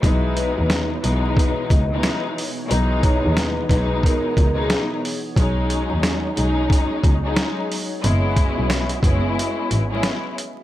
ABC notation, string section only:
X:1
M:4/4
L:1/16
Q:"Swing 16ths" 1/4=90
K:C#dor
V:1 name="String section"
[B,,E,G,B,D]6 [B,,E,G,B,D]4- [B,,E,G,B,D] [B,,E,G,B,D]4 z | [B,,E,G,B,D]6 [B,,E,G,B,D]4- [B,,E,G,B,D] [B,,E,G,B,D]3 z2 | [F,G,CD]6 [F,G,CD]4- [F,G,CD] [F,G,CD]4 z | [G,B,CE]6 [G,B,CE]4- [G,B,CE] [G,B,CE]3 z2 |]